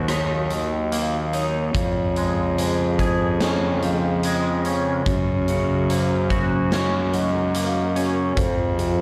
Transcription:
Already playing: fingered electric bass D#2, clean electric guitar D#3 A#3 F#4, analog synth pad D#3 F#3 A#3 F#4 A#4
0.08 clean electric guitar D#4, vibraphone C#5, cross-stick, closed hi-hat
0.50 clean electric guitar D#3, vibraphone D#5, closed hi-hat
0.92 clean electric guitar A#3, closed hi-hat
1.33 clean electric guitar D#4, vibraphone C#5, closed hi-hat
1.74 fingered electric bass F2, analog synth pad C#3 F3 G#3 F4 G#4, clean electric guitar F3, vibraphone C#5, kick, closed hi-hat
2.16 clean electric guitar G#3, closed hi-hat
2.57 clean electric guitar G#3, vibraphone C5, closed hi-hat
2.99 clean electric guitar G#4, kick, closed hi-hat
3.40 clean electric guitar C#4, vibraphone C#5, snare, closed hi-hat
3.82 clean electric guitar F3, closed hi-hat
4.23 clean electric guitar G#3, closed hi-hat
4.65 clean electric guitar C#4, vibraphone C#5, closed hi-hat
5.06 fingered electric bass F#2, clean electric guitar F#2, analog synth pad F#3 A#3 F#4 A#4, vibraphone C#5, kick, closed hi-hat
5.48 clean electric guitar C#3, closed hi-hat
5.89 clean electric guitar A#3, vibraphone C5, closed hi-hat
6.30 clean electric guitar F#4, kick, closed hi-hat
6.71 clean electric guitar C#4, vibraphone C#5, snare, closed hi-hat
7.13 clean electric guitar F#3, vibraphone D#5, closed hi-hat
7.54 clean electric guitar A#3, closed hi-hat
7.96 clean electric guitar C#4, vibraphone C#5, closed hi-hat
8.37 clean electric guitar F2, fingered electric bass F2, analog synth pad C3 F3 G#3 F4 G#4, vibraphone C5, kick, closed hi-hat
8.78 clean electric guitar C3, closed hi-hat

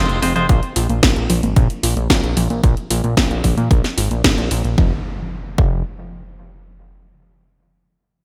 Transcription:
Already playing: clean electric guitar G#3 C4 F4 C5, downlifter
0.09 analog synth bass F1, closed hi-hat
0.22 analog synth bass F1, clean electric guitar G#3 C4 F4 C5, synth arpeggio sound C4, open hi-hat
0.36 analog synth bass F1, synth arpeggio sound F3, clean electric guitar G#3 C4 F4 C5, closed hi-hat
0.49 analog synth bass A#1, synth arpeggio sound A#3, kick, closed hi-hat
0.63 closed hi-hat
0.76 analog synth bass A#1, synth arpeggio sound F4, open hi-hat
0.89 analog synth bass A#1, synth arpeggio sound A#3, closed hi-hat
1.03 analog synth bass A#1, synth arpeggio sound A#3, kick, snare, closed hi-hat
1.16 analog synth bass A#1, closed hi-hat
1.29 analog synth bass A#1, synth arpeggio sound F4, open hi-hat, high tom
1.43 analog synth bass G#1, synth arpeggio sound A#3, closed hi-hat
1.56 analog synth bass A#1, synth arpeggio sound A#3, kick, closed hi-hat
1.70 closed hi-hat
1.83 analog synth bass A#1, synth arpeggio sound F4, open hi-hat
1.96 analog synth bass A#1, synth arpeggio sound A#3, closed hi-hat
2.10 analog synth bass A#1, synth arpeggio sound A#3, kick, snare, closed hi-hat
2.23 analog synth bass A#1, closed hi-hat
2.37 analog synth bass A#1, synth arpeggio sound F4, open hi-hat, high tom
2.50 analog synth bass A#1, synth arpeggio sound A#3, closed hi-hat
2.64 analog synth bass A#1, synth arpeggio sound A#3, kick, closed hi-hat
2.77 closed hi-hat
2.90 analog synth bass A#1, synth arpeggio sound F4, open hi-hat
3.04 analog synth bass A#1, synth arpeggio sound A#3, closed hi-hat
3.17 analog synth bass A#1, synth arpeggio sound A#3, kick, snare, closed hi-hat
3.31 analog synth bass A#1, closed hi-hat
3.44 analog synth bass A#1, synth arpeggio sound F4, kick, open hi-hat, high tom
3.57 analog synth bass A#2, synth arpeggio sound A#3, closed hi-hat
3.71 analog synth bass A#1, synth arpeggio sound A#3, kick, closed hi-hat
3.84 snare, closed hi-hat
3.98 analog synth bass G#1, synth arpeggio sound F4, open hi-hat
4.11 analog synth bass A#1, synth arpeggio sound A#3, closed hi-hat
4.24 analog synth bass G#1, synth arpeggio sound A#3, kick, snare, closed hi-hat
4.38 analog synth bass A#1, closed hi-hat
4.51 analog synth bass A#1, synth arpeggio sound F4, open hi-hat
4.64 analog synth bass A#1, synth arpeggio sound A#3, closed hi-hat
4.78 analog synth bass F1, synth arpeggio sound F3, kick, impact
5.58 analog synth bass F1, synth arpeggio sound F3, kick

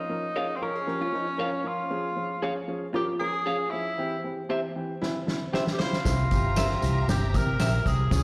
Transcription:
Already playing: tenor saxophone D#4
0.09 upright piano F3 C#4 A#4
0.36 upright piano F3 C#4 G#4, clean electric guitar A#4 C#5 F5
0.56 tenor saxophone C4
0.61 upright piano F3 C#4 A#4, tenor saxophone C#4, hollow-body jazz guitar A#4
0.75 hollow-body jazz guitar G#4
0.87 upright piano F3 C#4 A#4, hollow-body jazz guitar G4
1.02 hollow-body jazz guitar F4
1.12 upright piano F3 C#4 A#4, hollow-body jazz guitar D#4
1.27 hollow-body jazz guitar C#4
1.38 upright piano F3 C#4 A#4, clean electric guitar A#4 C#5 F5
1.64 upright piano F3 C#4 A#4, tenor saxophone F4
1.90 upright piano F3 C#4 G#4
2.16 upright piano F3 C#4 G#4
2.42 upright piano F3 C#4 G#4, clean electric guitar G#4 C#5 F5
2.68 upright piano F3 C#4 G#4
2.94 upright piano F3 C#4 A#4, hollow-body jazz guitar F4, tenor saxophone G4
3.20 upright piano F3 C#4 G#4, tenor saxophone G#4, hollow-body jazz guitar A#4
3.33 hollow-body jazz guitar G#4
3.46 upright piano F3 C#4 G#4, clean electric guitar G#4 C#5 F5
3.70 upright piano F3 C#4 G#4, tenor saxophone E4
3.98 upright piano E3 C4 G4
4.24 upright piano E3 C4 G4
4.49 upright piano E3 C4 G4, clean electric guitar G4 C5 E5
4.76 upright piano E3 C4 G4
5.02 upright piano E3 C4 E4, snare
5.27 upright piano E3 C4 E4, snare
5.52 upright piano E3 C4 G4, horn section E4 G4 C5, clean electric guitar G4 C5 E5, snare
5.67 snare
5.73 tenor saxophone G4
5.78 upright piano E3 C4 G4, horn section E4 G4 C5, tenor saxophone F4, snare
5.93 snare
6.05 fingered electric bass C2, upright piano E3 C4 E4, violin section G4 E5 A#5, kick, snare, closed hi-hat, tambourine
6.31 fingered electric bass G1, upright piano E3 C4 G4, kick, closed hi-hat, tambourine
6.56 upright piano E3 C4 A#4, clean electric guitar G4 C5 E5, snare, closed hi-hat, tambourine
6.70 snare
6.82 fingered electric bass C2, upright piano E3 C4 G4, closed hi-hat, tambourine
7.08 fingered electric bass G1, upright piano E3 C4 G4, tenor saxophone G4, snare, closed hi-hat, tambourine
7.33 fingered electric bass C3, upright piano E3 C4 G4, tenor saxophone A#4, kick, closed hi-hat, tambourine
7.59 fingered electric bass A#1, upright piano E3 C4 G4, clean electric guitar G4 C5 E5, snare, closed hi-hat, tambourine
7.86 fingered electric bass C2, upright piano E3 C4 G4, tenor saxophone G#4, kick, closed hi-hat, tambourine
8.11 fingered electric bass C#2, upright piano F3 C#4 G#4, violin section F4 C#5 G#5, kick, snare, closed hi-hat, tambourine

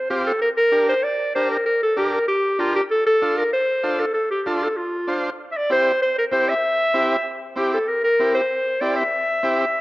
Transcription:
0.10 transistor combo organ C4 F4 G4, clarinet G4
0.27 clarinet A4
0.42 clarinet A#4
0.58 clarinet A#4
0.72 transistor combo organ D4 G4 A#4
0.89 clarinet C5
1.03 clarinet D5
1.35 transistor combo organ D4 G4 A#4, clarinet C5
1.51 clarinet A#4
1.66 clarinet A#4
1.83 clarinet A4
1.96 transistor combo organ D4 G4 A#4, clarinet G4
2.13 clarinet A#4
2.28 clarinet G4
2.59 transistor combo organ D4 G4 A#4, clarinet F4
2.76 clarinet G4
2.91 clarinet A4
3.07 clarinet A4
3.22 transistor combo organ D4 F4 A4
3.38 clarinet A#4
3.53 clarinet C5
3.83 transistor combo organ D4 F4 A4
4.00 clarinet A4
4.14 clarinet A4
4.31 clarinet G4
4.43 transistor combo organ D4 F4, clarinet G4
4.47 clarinet F4, transistor combo organ A4
4.63 clarinet A4
4.77 clarinet F4
5.07 transistor combo organ D4 F4 C5
5.52 clarinet E5
5.57 clarinet D5
5.70 transistor combo organ C4 E4 G4, clarinet C5
6.02 clarinet C5
6.18 clarinet A#4
6.32 transistor combo organ C4 E4 G4, clarinet C5
6.49 clarinet E5
6.94 transistor combo organ C4 E4 G4
7.56 transistor combo organ C4 E4 G4, clarinet G4
7.73 clarinet A4
7.88 clarinet A#4
8.04 clarinet A#4
8.19 transistor combo organ C4 E4 G4
8.35 clarinet C5
8.81 transistor combo organ C4 E4 G4, clarinet D5
8.96 clarinet E5
9.43 transistor combo organ C4 E4 G4

